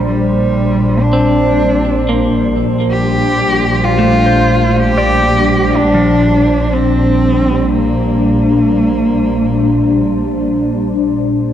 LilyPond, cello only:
\new Staff \with { instrumentName = "Cello" } { \time 4/4 \key bes \major \tempo 4 = 62 g4 d'4. r8 g'4 | f'4 g'4 d'4 c'4 | bes2. r4 | }